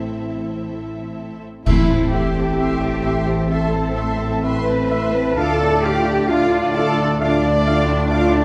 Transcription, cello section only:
0, 0, Header, 1, 2, 480
1, 0, Start_track
1, 0, Key_signature, 0, "minor"
1, 0, Tempo, 995025
1, 805, Tempo, 940439
1, 806, Time_signature, 4, 2, 24, 8
1, 1285, Tempo, 921659
1, 3685, Tempo, 896861
1, 4343, End_track
2, 0, Start_track
2, 0, Title_t, "Cello section"
2, 0, Program_c, 0, 48
2, 0, Note_on_c, 0, 45, 59
2, 701, Note_off_c, 0, 45, 0
2, 805, Note_on_c, 0, 64, 101
2, 1031, Note_off_c, 0, 64, 0
2, 1050, Note_on_c, 0, 67, 99
2, 1757, Note_on_c, 0, 69, 84
2, 1760, Note_off_c, 0, 67, 0
2, 2240, Note_off_c, 0, 69, 0
2, 2242, Note_on_c, 0, 71, 105
2, 2717, Note_off_c, 0, 71, 0
2, 2722, Note_on_c, 0, 69, 125
2, 2963, Note_off_c, 0, 69, 0
2, 2969, Note_on_c, 0, 67, 124
2, 3208, Note_off_c, 0, 67, 0
2, 3208, Note_on_c, 0, 65, 118
2, 3446, Note_on_c, 0, 69, 117
2, 3449, Note_off_c, 0, 65, 0
2, 3681, Note_on_c, 0, 62, 115
2, 3686, Note_off_c, 0, 69, 0
2, 4343, Note_off_c, 0, 62, 0
2, 4343, End_track
0, 0, End_of_file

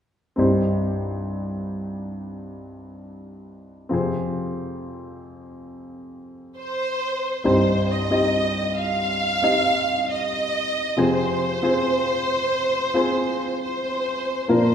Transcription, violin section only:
0, 0, Header, 1, 2, 480
1, 0, Start_track
1, 0, Key_signature, -3, "minor"
1, 0, Tempo, 882353
1, 212, Time_signature, 4, 2, 24, 8
1, 8022, End_track
2, 0, Start_track
2, 0, Title_t, "Violin section"
2, 0, Program_c, 0, 48
2, 3576, Note_on_c, 0, 72, 81
2, 4032, Note_off_c, 0, 72, 0
2, 4058, Note_on_c, 0, 72, 74
2, 4278, Note_off_c, 0, 72, 0
2, 4293, Note_on_c, 0, 75, 67
2, 4772, Note_off_c, 0, 75, 0
2, 4778, Note_on_c, 0, 77, 88
2, 5473, Note_off_c, 0, 77, 0
2, 5504, Note_on_c, 0, 75, 78
2, 5977, Note_on_c, 0, 72, 86
2, 5978, Note_off_c, 0, 75, 0
2, 7410, Note_off_c, 0, 72, 0
2, 7417, Note_on_c, 0, 72, 69
2, 7872, Note_off_c, 0, 72, 0
2, 7897, Note_on_c, 0, 72, 82
2, 8022, Note_off_c, 0, 72, 0
2, 8022, End_track
0, 0, End_of_file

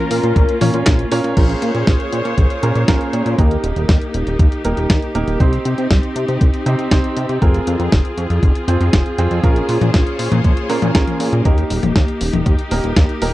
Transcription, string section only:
0, 0, Header, 1, 2, 480
1, 0, Start_track
1, 0, Tempo, 504202
1, 1303, Time_signature, 4, 2, 24, 8
1, 12695, End_track
2, 0, Start_track
2, 0, Title_t, "String section"
2, 0, Program_c, 0, 48
2, 0, Note_on_c, 0, 58, 80
2, 0, Note_on_c, 0, 61, 74
2, 0, Note_on_c, 0, 65, 90
2, 1265, Note_off_c, 0, 58, 0
2, 1265, Note_off_c, 0, 61, 0
2, 1265, Note_off_c, 0, 65, 0
2, 1304, Note_on_c, 0, 58, 72
2, 1304, Note_on_c, 0, 65, 65
2, 1304, Note_on_c, 0, 68, 66
2, 1304, Note_on_c, 0, 72, 65
2, 1304, Note_on_c, 0, 73, 81
2, 3204, Note_off_c, 0, 65, 0
2, 3204, Note_off_c, 0, 68, 0
2, 3204, Note_off_c, 0, 72, 0
2, 3204, Note_off_c, 0, 73, 0
2, 3223, Note_on_c, 0, 63, 66
2, 3223, Note_on_c, 0, 67, 79
2, 5105, Note_off_c, 0, 58, 0
2, 5124, Note_off_c, 0, 63, 0
2, 5144, Note_on_c, 0, 60, 74
2, 5144, Note_on_c, 0, 63, 67
2, 7025, Note_off_c, 0, 67, 0
2, 7045, Note_off_c, 0, 63, 0
2, 7064, Note_on_c, 0, 65, 66
2, 7064, Note_on_c, 0, 68, 81
2, 8945, Note_off_c, 0, 60, 0
2, 8984, Note_on_c, 0, 58, 71
2, 8984, Note_on_c, 0, 72, 66
2, 8984, Note_on_c, 0, 73, 79
2, 10865, Note_off_c, 0, 65, 0
2, 10865, Note_off_c, 0, 68, 0
2, 10884, Note_off_c, 0, 73, 0
2, 10885, Note_off_c, 0, 72, 0
2, 10904, Note_on_c, 0, 63, 67
2, 10904, Note_on_c, 0, 67, 82
2, 12695, Note_off_c, 0, 58, 0
2, 12695, Note_off_c, 0, 63, 0
2, 12695, Note_off_c, 0, 67, 0
2, 12695, End_track
0, 0, End_of_file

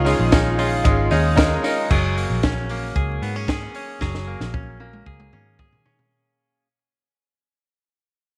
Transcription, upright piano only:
0, 0, Header, 1, 2, 480
1, 0, Start_track
1, 0, Tempo, 526316
1, 1736, Time_signature, 4, 2, 24, 8
1, 7635, End_track
2, 0, Start_track
2, 0, Title_t, "Upright piano"
2, 0, Program_c, 0, 0
2, 0, Control_c, 0, 64, 127
2, 0, Note_on_c, 0, 61, 88
2, 0, Note_on_c, 0, 63, 93
2, 0, Note_on_c, 0, 65, 86
2, 0, Note_on_c, 0, 68, 107
2, 43, Note_off_c, 0, 61, 0
2, 43, Note_on_c, 0, 61, 99
2, 48, Note_off_c, 0, 63, 0
2, 48, Note_on_c, 0, 63, 85
2, 55, Note_off_c, 0, 65, 0
2, 55, Note_on_c, 0, 65, 86
2, 57, Note_off_c, 0, 68, 0
2, 57, Note_on_c, 0, 68, 113
2, 242, Note_off_c, 0, 61, 0
2, 245, Note_off_c, 0, 63, 0
2, 248, Note_off_c, 0, 65, 0
2, 249, Note_off_c, 0, 68, 0
2, 286, Note_on_c, 0, 61, 103
2, 291, Note_on_c, 0, 63, 89
2, 295, Note_on_c, 0, 65, 90
2, 301, Note_on_c, 0, 68, 100
2, 483, Note_off_c, 0, 61, 0
2, 486, Note_off_c, 0, 63, 0
2, 488, Note_off_c, 0, 65, 0
2, 491, Note_off_c, 0, 68, 0
2, 526, Note_on_c, 0, 61, 75
2, 528, Note_on_c, 0, 63, 78
2, 534, Note_on_c, 0, 65, 71
2, 541, Note_on_c, 0, 68, 93
2, 723, Note_off_c, 0, 61, 0
2, 724, Note_off_c, 0, 63, 0
2, 728, Note_off_c, 0, 65, 0
2, 731, Note_off_c, 0, 68, 0
2, 762, Note_on_c, 0, 61, 85
2, 769, Note_on_c, 0, 63, 79
2, 773, Note_on_c, 0, 65, 78
2, 777, Note_on_c, 0, 68, 89
2, 961, Note_off_c, 0, 61, 0
2, 965, Note_off_c, 0, 63, 0
2, 967, Note_off_c, 0, 65, 0
2, 969, Note_off_c, 0, 68, 0
2, 1010, Note_on_c, 0, 61, 94
2, 1012, Note_on_c, 0, 75, 66
2, 1014, Note_on_c, 0, 63, 70
2, 1018, Note_on_c, 0, 65, 70
2, 1024, Note_on_c, 0, 68, 85
2, 1205, Note_off_c, 0, 61, 0
2, 1207, Note_off_c, 0, 63, 0
2, 1209, Note_off_c, 0, 65, 0
2, 1212, Note_off_c, 0, 68, 0
2, 1236, Note_on_c, 0, 61, 112
2, 1237, Note_off_c, 0, 75, 0
2, 1243, Note_on_c, 0, 63, 107
2, 1247, Note_on_c, 0, 82, 82
2, 1249, Note_on_c, 0, 65, 100
2, 1251, Note_on_c, 0, 70, 127
2, 1438, Note_off_c, 0, 61, 0
2, 1441, Note_off_c, 0, 63, 0
2, 1444, Note_off_c, 0, 65, 0
2, 1445, Note_off_c, 0, 70, 0
2, 1485, Note_on_c, 0, 61, 87
2, 1490, Note_on_c, 0, 63, 77
2, 1493, Note_on_c, 0, 65, 78
2, 1502, Note_on_c, 0, 70, 94
2, 1682, Note_off_c, 0, 61, 0
2, 1684, Note_off_c, 0, 63, 0
2, 1686, Note_off_c, 0, 65, 0
2, 1691, Note_off_c, 0, 70, 0
2, 1697, Note_off_c, 0, 82, 0
2, 1747, Control_c, 0, 64, 0
2, 7635, End_track
0, 0, End_of_file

